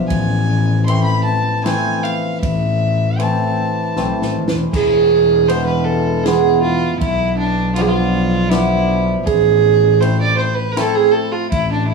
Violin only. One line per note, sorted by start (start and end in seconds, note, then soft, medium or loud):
0.08 0.83 G#5 medium
0.86 1.03 C6 medium
1.04 1.24 B5 loud
1.24 1.61 A5 medium
1.64 2.05 G#5 loud
2.03 2.40 F5 medium
2.41 3.22 E5 medium
3.20 4.35 A5 medium
4.73 5.50 G#4 loud
5.48 5.65 C5 medium
5.66 5.86 B4 medium
5.84 6.25 A4 medium
6.24 6.61 G#4 medium
6.62 6.97 F4 medium
7.00 7.35 E4 medium
7.38 7.73 D4 medium
7.75 7.83 F4 medium
7.81 7.89 G#4 medium
7.88 8.51 F4 medium
8.49 9.07 E4 loud
9.24 10.02 G#4 loud
10.00 10.20 C5 medium
10.21 10.37 D5 loud
10.38 10.56 C5 medium
10.54 10.73 B4 medium
10.72 10.96 A4 loud
10.95 11.13 G#4 loud
11.11 11.33 A4 medium
11.32 11.50 F4 medium
11.51 11.69 E4 loud
11.72 11.87 D4 medium
11.88 11.94 E4 medium